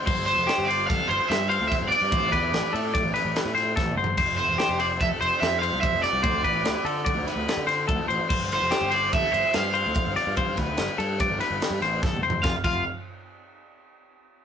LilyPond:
<<
  \new Staff \with { instrumentName = "Overdriven electric guitar" } { \time 5/4 \key g \mixolydian \tempo 4 = 145 r8 c''4 d''8 f''8 c''8 e''8 f''8 e''8 d''8~ | d''2.~ d''8 r4. | r8 c''4 d''8 e''8 c''8 e''8 f''8 e''8 d''8~ | d''2.~ d''8 r4. |
r8 c''4 d''8 e''4 f''2~ | f''1 r4 | f''8 f''8 r1 | }
  \new Staff \with { instrumentName = "Clean electric guitar" } { \time 5/4 \key g \mixolydian c''4 g'8 c''8 a'8 c''4 c''4 d''8 | c''8 b'4 a'8 d''8 b'4 c''8 a'8 c''8 | c''4 g'8 c''8 a'8 c''4 c''4 d''8 | c''8 b'4 a'8 d''8 b'4 c''8 a'8 c''8 |
c''4 g'8 c''8 a'8 c''4 c''4 d''8 | c''8 b'4 a'8 d''8 b'4 c''8 a'8 c''8 | f'8 f'8 r1 | }
  \new Staff \with { instrumentName = "Picked electric bass" } { \clef bass \time 5/4 \key g \mixolydian g,,8. f,,16 r16 g,,8. g,,16 r16 g,,16 r16 g,8. d,16 r16 g,,16 r16 g,16 | a,,8 e,8 a,,16 r16 a,8. a,,16 r16 a,,16 r16 a,8. a,,8 g,,8 | f,,8. e,,16 r16 f,,8. f,,16 r16 f,,16 r16 f,8. c,16 r16 f,,16 r16 c,16 | d,8 a,,8 d,16 r16 d8. d,16 r16 d,16 r16 d8. d,16 r16 a,,16 r16 |
g,,8. f,,16 r16 g,,8. g,,16 r16 g,,16 r16 g,8. d,16 r16 g,,16 r16 g,16~ | g,8 d,8 g,,16 r16 g,8. g,,16 r16 g,,16 r16 g,16 a,,8 g,,8 f,,8 | f,,16 r16 f,,8 r1 | }
  \new DrumStaff \with { instrumentName = "Drums" } \drummode { \time 5/4 <cymc bd>8 cymr8 <cymr sn>8 cymr8 <bd cymr sn>8 cymr8 <cymr sn>8 cymr8 <bd cymr sn>8 cymr8 | <bd cymr>8 <bd cymr sn>8 <cymr sn>8 cymr8 <bd cymr sn>8 <cymr sn>8 <cymr sn>8 <cymr sn>8 \tuplet 3/2 { <bd sn>8 toml8 tomfh8 } | <cymc bd cymr>8 cymr8 <cymr sn>8 cymr8 <bd cymr sn>8 cymr8 <cymr sn>8 cymr8 <bd cymr>8 <cymr sn>8 | <bd cymr>8 <bd cymr>8 <cymr sn>8 cymr8 <bd cymr>8 <cymr sn>8 <cymr sn>8 <cymr sn>8 <bd cymr>8 cymr8 |
<cymc bd>8 <cymr sn>8 <cymr sn>8 cymr8 <bd cymr sn>8 cymr8 <cymr sn>8 cymr8 <bd cymr>8 <cymr sn>8 | <bd cymr>8 <bd cymr sn>8 <cymr sn>8 cymr8 <bd cymr sn>8 <cymr sn>8 <cymr sn>8 <cymr sn>8 \tuplet 3/2 { <bd sn>8 toml8 tomfh8 } | <bd sn>8 <cymc bd>8 r4 r4 r4 r4 | }
>>